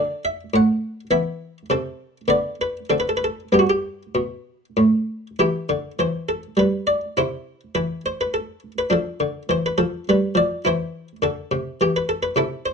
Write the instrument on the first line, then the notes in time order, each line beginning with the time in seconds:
harpsichord
Already playing: D3 D4 D5
0.25 E5
0.54 A2 F#5
1.11 E3 B3 E5
1.70 C3 C4 A4
2.28 D3 B3 D5
2.61 B4
2.90 D3 C4 A4
3.00 B4
3.09 A4
3.17 B4
3.24 A4
3.52 G2 B3 G4
3.59 F#4
3.70 G4
4.15 B2
4.77 A2
5.39 E3 E4 G4
5.69 D3
5.99 E3 C5
6.29 A4
6.57 G3 B4
6.87 D5
7.17 C3 E4 C5
7.75 E3 B4
8.06 C5
8.21 B4
8.34 A4
8.78 B4
8.90 F3 D4 A4
9.20 D3
9.49 E3 C5
9.66 B4
9.78 F3 A4
10.09 G3 B4
10.35 F3 D5
10.65 E3 E4 C5
11.22 D3 A4
11.51 C3
11.81 E3 G4
11.96 B4
12.09 A4
12.23 B4
12.36 C3 E4 A4
12.66 C5